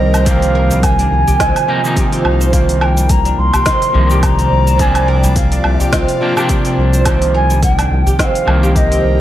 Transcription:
Already playing: C3 D#3 F3 G3 A#3 A#4 D#5
0.00 C2
0.14 C5, open hi-hat, low woodblock, shaker
0.25 C3 F3 A#3 C4 F5, kick, open hi-hat, shaker
0.29 D#3
0.42 open hi-hat, shaker
0.55 A#4
0.71 G3, open hi-hat, udu, shaker
0.83 D#3 A#3 G#5, kick, open hi-hat, low woodblock, shaker
0.99 D4, open hi-hat, shaker
1.12 C2
1.27 F4 G4, open hi-hat, udu, shaker
1.40 C2 C4, kick, snare, open hi-hat, shaker
1.56 open hi-hat, low woodblock, shaker
1.68 C3 F3 A#3 D#4
1.82 C3 F3 A#3 D#4, shaker
1.97 G4, kick, open hi-hat, shaker
2.12 C4, open hi-hat, shaker
2.25 C2, low woodblock
2.41 C5, open hi-hat, shaker
2.51 C3 F3 A#3 C4 F5, kick, open hi-hat, shaker
2.56 D#3
2.69 open hi-hat, shaker
2.78 A#3 A#4 G#5, low woodblock
2.85 G5
2.97 G3, open hi-hat, shaker
3.09 A#3 A#5, kick, open hi-hat, shaker
3.25 D4, open hi-hat, shaker
3.38 C2 C6
3.54 G4 D5, open hi-hat, udu, low woodblock, shaker
3.66 C4, kick, snare, open hi-hat, shaker
3.82 open hi-hat, shaker
3.93 C2 C3 D#3 F3 A#3 D#4, udu
4.10 G4, shaker
4.23 G4 A#5, kick, open hi-hat, low woodblock, shaker
4.39 C4, open hi-hat, shaker
4.52 C2
4.67 C5, open hi-hat, shaker
4.78 C3 F3 A#3 C4 D4 G#5, kick, open hi-hat, shaker
4.95 open hi-hat, low woodblock, shaker
5.08 A#4 G5
5.20 G3 F4, open hi-hat, udu, shaker
5.36 A#3 F5, kick, open hi-hat, shaker
5.52 D4, open hi-hat, shaker
5.64 C2, low woodblock
5.80 G4, open hi-hat, udu, shaker
5.93 C2 C4, kick, snare, open hi-hat, shaker
6.08 open hi-hat, shaker
6.21 C3 F3 A#3 D4
6.36 C3 F3 A#3 D4 G4, low woodblock, shaker
6.49 G4, kick, open hi-hat, shaker
6.65 C4, open hi-hat, shaker
6.78 C2
6.93 C5, open hi-hat, shaker
7.05 C3 D#3 F3 A#3 C4, kick, open hi-hat, low woodblock, shaker
7.22 open hi-hat, shaker
7.34 A#4 G#5
7.50 G3, open hi-hat, shaker
7.63 A#3 G5, kick, open hi-hat, shaker
7.78 D4, open hi-hat, low woodblock, shaker
7.91 C2
8.06 G4 A#4, open hi-hat, udu, shaker
8.19 C4 G5, kick, snare, open hi-hat, shaker
8.24 F5
8.35 open hi-hat, shaker
8.45 C2 C3 D#3 F3 A#3 D#4, udu, low woodblock
8.63 G4, shaker
8.76 G4 D#5, kick, open hi-hat, shaker
8.91 C4, open hi-hat, shaker
9.04 C2

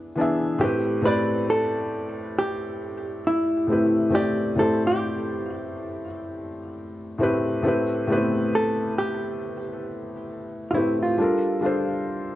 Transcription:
0.16 E3 B3 D4
0.20 G#4 E5
0.58 A2 A3 C4 G4
0.63 G4 B4
1.01 A2 A3 C4
1.05 G4 B4 D5
1.50 A4
2.38 G4
3.27 E4
3.67 A2 A3 C4
3.71 G4 B4
4.09 A2 A3 C4 G4
4.15 G4 D5
4.55 A2 A3 C4 A4
4.60 G4 C5
4.87 G4
7.18 A2 A3 C4
7.22 G4 B4
7.62 A2 A3 C4
7.66 G4 B4
8.07 A2 A3 B3
8.11 G4 B4
8.16 C4
8.55 A4
8.98 G4
10.71 A2 A3 E4 F4
10.75 C4 G4 B4
11.03 F4
11.17 G3 D4 F4
11.21 A4 A#4
11.61 G3 D4 F4
11.65 A4 C5

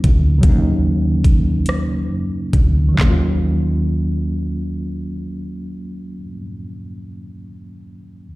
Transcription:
Already playing: F#3 A#3 C#4 D#4 F4
0.04 D2, kick, closed hi-hat
0.39 C#3 F#3
0.43 D#2 A#3 C#4, kick, closed hi-hat
0.49 D#4
1.24 kick, closed hi-hat
1.66 cross-stick, closed hi-hat
2.11 F#2
2.53 D2, kick, closed hi-hat
2.89 D#3
2.94 F#3
2.98 D#2 A#3, kick, snare, clap
3.04 C#4
3.09 F4

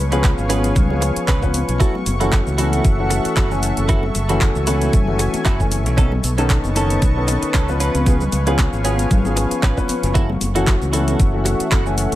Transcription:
Already playing: C#2 B4 F5 G#5 C#6
0.12 F3 B3 C#4 F4 G#4 B4, closed hi-hat, shaker
0.24 kick, clap, closed hi-hat, muted conga, shaker
0.38 G#1, shaker
0.49 F3 B3 C#4 F4 G#4 B4, open hi-hat, high conga, shaker
0.64 closed hi-hat, muted conga, shaker
0.75 C#2, kick, closed hi-hat, low conga, shaker
0.90 F3 B3 C#4 G#4, muted conga
1.01 muted clean electric guitar stroke, open hi-hat, shaker
1.16 muted clean electric guitar stroke, muted fingered electric bass stroke, closed hi-hat, shaker
1.28 C#2 C#4 F4 B4, kick, clap, closed hi-hat, muted conga, shaker
1.42 F3 B3 C#4 B4, kick, high conga, shaker
1.54 muted clean electric guitar stroke, open hi-hat, muted conga, shaker
1.69 B1, closed hi-hat, shaker
1.80 E3 A3 C#4 E4 F#4 A4 E5 F#5, kick, closed hi-hat, muted conga, shaker
1.94 high conga, low conga
2.06 F#1, muted clean electric guitar stroke, open hi-hat, muted conga, shaker
2.20 E3 A3 C#4 E4 F#4 A4, closed hi-hat, shaker
2.32 kick, clap, closed hi-hat, shaker
2.47 C#2, muted conga, shaker
2.58 E3 A3 C#4 E4 F#4 A4, open hi-hat, high conga, shaker
2.73 closed hi-hat, muted conga, shaker
2.85 F#1, kick, closed hi-hat, shaker
2.99 E3 A3 C#4 F#4
3.10 muted clean electric guitar stroke, open hi-hat, muted conga, shaker
3.25 muted clean electric guitar stroke, muted fingered electric bass stroke, closed hi-hat, shaker
3.37 F#1 E4 F#4 A4, kick, clap, closed hi-hat, muted conga, shaker
3.51 E3 A3 C#4 G#5, shaker
3.63 muted clean electric guitar stroke, open hi-hat, shaker
3.77 F#1, closed hi-hat, muted conga, high conga, shaker
3.89 E3 A3 C#4 E4 F#4 A4 G#5, kick, closed hi-hat, shaker
4.03 muted conga, low conga
4.15 F#1, muted clean electric guitar stroke, open hi-hat, shaker
4.29 E3 A3 C#4 E4 F#4 A4, closed hi-hat, shaker
4.41 kick, clap, closed hi-hat, muted conga, shaker
4.55 C#2, shaker
4.67 E3 A3 C#4 E4 F#4 A4, open hi-hat, muted conga, high conga, shaker
4.82 closed hi-hat, shaker
4.93 F#1, kick, closed hi-hat, low conga, shaker
5.07 E3 A3 C#4 F#4, muted conga
5.19 muted clean electric guitar stroke, open hi-hat, shaker
5.34 muted clean electric guitar stroke, muted fingered electric bass stroke, closed hi-hat, muted conga, shaker
5.45 F#1 E4 F#4 A4, kick, clap, closed hi-hat, shaker
5.60 E3 A3 C#4 G#5, kick, shaker
5.71 muted clean electric guitar stroke, open hi-hat, muted conga, shaker
5.86 B1, closed hi-hat, shaker
5.97 D#3 B3 C#4 D#4 A4 B4 D#5 A5 C#6, kick, closed hi-hat, muted conga, shaker
6.12 high conga, low conga
6.23 B1, muted clean electric guitar stroke, open hi-hat, shaker
6.38 D#3 B3 C#4 D#4 A4, closed hi-hat, muted conga, shaker
6.50 kick, clap, closed hi-hat, shaker
6.64 F#1, muted conga, shaker
6.75 D#3 B3 C#4 D#4 A4, open hi-hat, high conga, shaker
6.90 closed hi-hat, shaker
7.02 B1, kick, closed hi-hat, muted conga, shaker
7.16 D#3 B3 C#4 A4
7.28 muted clean electric guitar stroke, open hi-hat, muted conga, shaker
7.42 muted clean electric guitar stroke, muted fingered electric bass stroke, closed hi-hat, shaker
7.54 C#2 C#4 D#4 A4, kick, clap, closed hi-hat, shaker
7.68 F3 B3 C#4 B4, muted conga, shaker
7.80 C#4 F4 B4 F5 G#5 C#6, open hi-hat, shaker
7.95 C#2, closed hi-hat, muted conga, high conga, shaker
8.06 F3 B3 C#4 G#4, kick, closed hi-hat, shaker
8.21 low conga, shaker
8.32 C#2, muted clean electric guitar stroke, open hi-hat, muted conga, shaker
8.47 F3 B3 C#4 F4 G#4 B4, closed hi-hat, shaker
8.59 kick, clap, closed hi-hat, muted conga, shaker
8.73 G#1, shaker
8.84 F3 B3 C#4 F4 G#4, open hi-hat, high conga, shaker
8.99 closed hi-hat, muted conga, shaker
9.11 G#1, kick, closed hi-hat, low conga, shaker
9.25 F3 B3 C#4 G#4, muted conga, shaker
9.36 muted clean electric guitar stroke, open hi-hat, shaker
9.51 muted clean electric guitar stroke, muted fingered electric bass stroke, closed hi-hat, shaker
9.63 G#1 C#4 F4 B4, kick, clap, closed hi-hat, muted conga, shaker
9.77 F3 B3 C#4 B4, kick, high conga, shaker
9.88 muted clean electric guitar stroke, muted fingered electric bass stroke, open hi-hat, muted conga, shaker
10.03 F#1, closed hi-hat, shaker
10.14 E3 A3 C#4 E4 F#4 A4 E5 F#5, kick, closed hi-hat, muted conga, shaker
10.29 high conga, low conga
10.41 F#1, muted clean electric guitar stroke, open hi-hat, muted conga, shaker
10.55 E3 A3 C#4 E4 F#4 A4, closed hi-hat, shaker
10.67 kick, clap, closed hi-hat, shaker
10.82 C#2, muted conga, shaker
10.93 E3 A3 C#4 E4 F#4 A4, open hi-hat, high conga, shaker
11.08 closed hi-hat, muted conga, shaker
11.20 F#1, kick, closed hi-hat, shaker
11.33 E3 A3 C#4 F#4
11.45 muted clean electric guitar stroke, open hi-hat, muted conga, shaker
11.59 muted clean electric guitar stroke, muted fingered electric bass stroke, closed hi-hat, shaker
11.71 F#1 E4 F#4 A4, kick, clap, closed hi-hat, muted conga, shaker
11.86 E3 A3 C#4 G#5, shaker
11.97 muted clean electric guitar stroke, open hi-hat, shaker
12.12 closed hi-hat, muted conga, shaker

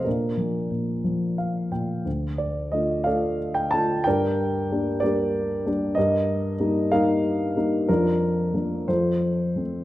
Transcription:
0.05 A#2 D4 A#4
0.37 F3
0.71 A#2
1.04 F3
1.38 F5
1.72 A#2 G5
2.05 D2
2.38 D5
2.72 D3 A3 F4 D#5
3.04 A3 D4 F4 A4 D5 F5
3.54 G5
3.71 A3 D4 F4 A5
4.04 G2 A#4 D5 G5
4.71 G3 A#3 D4
5.00 G3 A#3 D4 G4 A#4 D5
5.66 G3 A#3 D4
5.95 G2 G4 A#4 D#5
6.59 G3 A#3 D#4
6.92 G3 A#3 D#4 A#4 F5
7.56 G3 A#3 D#4
7.89 F2 D4 F4 A#4
8.54 F3 A#3 D4
8.88 F2 F4 A4 C5
9.56 F3 A3 C4

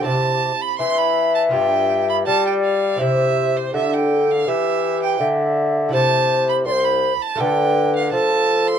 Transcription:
Already playing: G4
0.01 C4 E4 G4 A5
0.06 C3
0.61 B5
0.79 E3 E5 C6
0.98 B5
1.35 A5
1.49 B3 F4 G4 G5
1.53 G2
2.09 B5
2.26 G3 D5 A5
2.47 G5
2.64 F5
2.96 C4 E4 G4
3.00 C3 C5 E5
3.57 C5
3.74 D3 A4 E5
3.93 G5
4.31 F5
4.47 E3 G4 E5
5.03 G5
5.20 D3 E5
5.89 C3 A3 E4 A4
5.93 C3 C5 A5
6.49 B5
6.66 C2 D5 C6
6.72 C5
6.84 B5
7.22 A5
7.35 A3 F4 A4
7.40 D3 B4 G5
7.96 F5
8.12 F3 A4 A5
8.68 C6

